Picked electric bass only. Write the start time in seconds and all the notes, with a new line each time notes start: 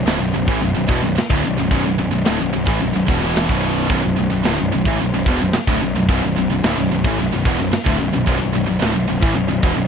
0.05 D1
0.20 B0
0.34 B0
0.48 A1
0.62 B0
0.76 B0
0.89 E1
1.04 B0
1.19 muted picked electric bass stroke
1.30 D1
1.46 B0
1.60 B0
1.71 B0
1.86 B0
2.00 B0
2.14 B0
2.28 D1
2.42 B0
2.55 B0
2.67 A1
2.83 B0
2.95 B0
3.08 E1
3.22 E1
3.49 B0
3.90 B0
4.05 B0
4.19 B0
4.31 B0
4.47 D1
4.61 B0
4.74 B0
4.86 A1
5.01 B0
5.14 B0
5.27 E1
5.41 B0
5.55 muted picked electric bass stroke
5.68 D1
5.83 B0
5.97 B0
6.08 B0
6.24 B0
6.37 B0
6.51 B0
6.64 D1
6.78 B0
6.92 B0
7.04 A1
7.19 B0
7.33 B0
7.45 E1
7.59 B0
7.73 muted picked electric bass stroke
7.86 D1
8.01 B0
8.14 B0
8.27 B0
8.41 B0
8.56 B0
8.68 B0
8.83 D1
8.97 B0
9.10 B0
9.23 A1
9.36 B0
9.50 B0
9.63 E1
9.77 B0